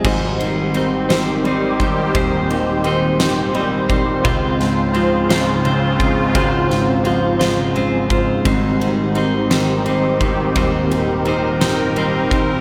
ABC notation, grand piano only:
X:1
M:6/8
L:1/8
Q:3/8=57
K:Ab
V:1 name="Grand piano" clef=bass
[A,,,A,,] E, C E, G, E, | [E,,,E,,] E, C E, G, E, | D,, A,, F, A,, D, A,, | A,,, A,, F, A,, D, A,, |
[A,,,A,,] E, E E, C E, | [E,,,E,,] E, E E, C E, |]